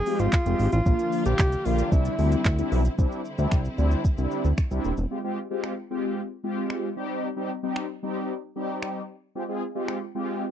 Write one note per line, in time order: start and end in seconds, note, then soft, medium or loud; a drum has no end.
0.00 1.89 F3 medium
0.00 0.84 G#3 medium
0.00 0.82 C4 medium
0.00 0.21 G#4 loud
0.00 0.82 G5 medium
0.06 0.29 G#3 medium
0.06 0.29 C4 medium
0.06 0.29 F4 medium
0.06 0.29 G4 medium
0.06 open hi-hat medium
0.06 shaker medium
0.19 0.28 G#1 loud
0.19 0.72 F4 loud
0.19 closed hi-hat medium
0.19 shaker medium
0.33 kick loud
0.33 clap loud
0.33 clap medium
0.33 shaker medium
0.46 0.55 F1 loud
0.46 0.69 G#3 medium
0.46 0.69 C4 medium
0.46 0.69 F4 medium
0.46 0.69 G4 medium
0.46 closed hi-hat medium
0.46 shaker medium
0.59 0.68 G#1 medium
0.59 open hi-hat medium
0.59 shaker medium
0.72 0.81 A1 medium
0.72 1.22 F4 loud
0.72 closed hi-hat medium
0.72 shaker medium
0.86 0.95 A#1 loud
0.86 2.96 D3 medium
0.86 1.31 F3 medium
0.86 1.31 A#3 medium
0.86 1.91 A#3 medium
0.86 1.32 D4 medium
0.86 1.91 F4 medium
0.86 1.32 F4 medium
0.86 kick loud
0.86 shaker medium
0.99 closed hi-hat soft
0.99 shaker soft
1.12 open hi-hat medium
1.12 shaker medium
1.26 1.34 A#1 medium
1.26 1.67 G4 loud
1.26 closed hi-hat medium
1.26 shaker medium
1.39 1.56 C2 medium
1.39 kick loud
1.39 clap loud
1.39 clap medium
1.39 shaker medium
1.52 closed hi-hat medium
1.52 shaker medium
1.65 1.83 A#1 medium
1.65 1.92 F3 medium
1.65 1.92 A#3 medium
1.65 1.91 D4 medium
1.65 1.92 F4 medium
1.65 1.92 G4 medium
1.65 open hi-hat medium
1.65 shaker medium
1.79 closed hi-hat medium
1.79 shaker medium
1.92 2.09 C2 loud
1.92 2.13 G3 medium
1.92 2.97 G3 medium
1.92 2.97 C4 medium
1.92 2.13 C4 medium
1.92 2.14 D4 medium
1.92 2.97 E4 medium
1.92 2.68 E4 medium
1.92 2.14 E4 medium
1.92 kick loud
1.92 shaker medium
2.05 closed hi-hat medium
2.05 shaker medium
2.19 2.36 D2 medium
2.19 2.41 G3 medium
2.19 2.41 C4 medium
2.19 2.42 D4 medium
2.19 2.42 E4 medium
2.19 open hi-hat medium
2.19 shaker medium
2.32 closed hi-hat medium
2.32 shaker medium
2.45 2.62 D2 loud
2.45 kick loud
2.45 clap loud
2.45 clap medium
2.45 shaker medium
2.58 2.81 G3 medium
2.58 2.81 C4 medium
2.58 2.81 D4 medium
2.58 2.81 E4 loud
2.58 closed hi-hat medium
2.58 shaker medium
2.72 2.89 B1 medium
2.72 open hi-hat medium
2.72 shaker medium
2.85 closed hi-hat medium
2.85 shaker medium
2.98 3.07 C2 loud
2.98 5.09 D3 medium
2.98 3.21 G3 medium
2.98 5.09 G3 medium
2.98 3.21 C4 medium
2.98 5.09 C4 medium
2.98 3.21 D4 medium
2.98 5.09 E4 medium
2.98 3.21 E4 loud
2.98 kick loud
2.98 shaker medium
3.12 shaker soft
3.25 shaker medium
3.38 3.47 D2 medium
3.38 3.61 G3 loud
3.38 3.61 C4 medium
3.38 3.61 D4 medium
3.38 3.61 E4 loud
3.38 shaker medium
3.51 3.69 C2 medium
3.51 finger snap loud
3.51 kick loud
3.51 shaker medium
3.65 shaker medium
3.78 3.95 D2 medium
3.78 4.01 G3 medium
3.78 4.01 C4 medium
3.78 4.01 D4 medium
3.78 4.01 E4 loud
3.78 shaker medium
3.91 shaker medium
4.05 kick loud
4.05 shaker medium
4.18 4.27 C2 loud
4.18 4.48 G3 medium
4.18 4.48 C4 medium
4.18 4.48 D4 medium
4.18 4.48 E4 loud
4.18 shaker medium
4.31 shaker medium
4.45 4.53 D2 medium
4.45 shaker medium
4.58 finger snap loud
4.58 kick loud
4.58 shaker medium
4.71 4.80 C2 medium
4.71 4.94 G3 medium
4.71 4.94 C4 medium
4.71 4.94 D4 medium
4.71 4.94 E4 loud
4.71 shaker medium
4.84 4.93 D#1 medium
4.84 shaker medium
4.97 5.06 E1 loud
4.97 shaker medium
5.11 5.18 G#3 medium
5.11 5.18 C4 medium
5.11 5.18 F4 medium
5.11 5.19 G4 medium
5.24 5.38 G#3 medium
5.24 5.38 C4 medium
5.24 5.38 F4 medium
5.24 5.39 G4 medium
5.51 5.73 G#3 medium
5.51 5.73 C4 medium
5.51 5.73 F4 medium
5.51 5.74 G4 medium
5.64 finger snap loud
5.91 6.21 G#3 medium
5.91 6.21 C4 medium
5.91 6.21 F4 medium
5.91 6.21 G4 medium
6.44 6.89 G#3 medium
6.44 6.89 C4 medium
6.44 6.89 F4 medium
6.44 6.89 G4 medium
6.70 finger snap loud
6.97 7.28 G3 medium
6.97 7.29 C4 medium
6.97 7.29 D#4 medium
6.97 7.29 G4 loud
7.36 7.50 G3 medium
7.36 7.50 C4 medium
7.36 7.51 D#4 medium
7.36 7.51 G4 medium
7.63 7.86 G3 medium
7.63 7.86 C4 medium
7.63 7.86 D#4 medium
7.63 7.86 G4 medium
7.76 finger snap loud
8.03 8.33 G3 medium
8.03 8.33 C4 medium
8.03 8.33 D#4 medium
8.03 8.33 G4 medium
8.56 9.01 G3 medium
8.56 9.01 C4 medium
8.56 9.01 D#4 medium
8.56 9.02 G4 medium
8.83 finger snap loud
9.35 9.43 G#3 medium
9.35 9.43 C4 medium
9.35 9.43 F4 medium
9.35 9.43 G4 medium
9.49 9.63 G#3 medium
9.49 9.63 C4 medium
9.49 9.63 F4 medium
9.49 9.63 G#4 medium
9.75 9.98 G#3 medium
9.75 9.98 C4 medium
9.75 9.98 F4 medium
9.75 9.98 G4 loud
9.88 finger snap loud
10.15 10.45 G#3 medium
10.15 10.45 C4 medium
10.15 10.46 F4 medium
10.15 10.46 G4 medium